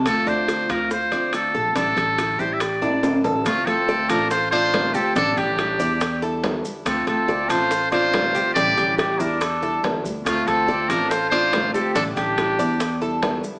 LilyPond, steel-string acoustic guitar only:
\new Staff \with { instrumentName = "Steel-string acoustic guitar" } { \time 4/4 \key d \minor \tempo 4 = 141 <d a c' f'>4 <d a c' f'>8 <a c' f'>8 r8 <a c' f'>8 <d a c' f'>4 | <d g d' e'>4 <d g d' e'>8 <g d' e'>8 r8 <g d' e'>8 <d g d' e'>4 | <d a c' f'>4 <d a c' f'>8 <a c' f'>8 r8 <a c' f'>8 <d a c' f'>4 | <d g d' e'>4 <d g d' e'>8 <g d' e'>8 r8 <g d' e'>8 <d g d' e'>4 |
<d a c' f'>4 <d a c' f'>8 <a c' f'>8 r8 <a c' f'>8 <d a c' f'>4 | <d g d' e'>4 <d g d' e'>8 <g d' e'>8 r8 <g d' e'>8 <d g d' e'>4 | <d a c' f'>4 <d a c' f'>8 <a c' f'>8 r8 <a c' f'>8 <d a c' f'>4 | <d g d' e'>4 <d g d' e'>8 <g d' e'>8 r8 <g d' e'>8 <d g d' e'>4 | }